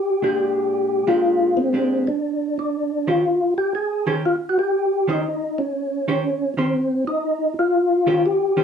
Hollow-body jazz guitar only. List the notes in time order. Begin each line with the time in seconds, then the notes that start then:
0.22 A#2 G#3 D4 G4
1.07 A#2 G#3 D4 G4
1.73 A#2 G#3 D4 G4
3.07 D#3 C#4 G4 C5
4.07 D#3 C#4 G4 C5
5.08 D#3 C#4 G4 C5
6.08 D#3 C#4 G4 C5
6.57 D#3 C#4 G4 C5
8.07 D#3 C#4 G4 C5
8.57 D#3 C#4 G4 C5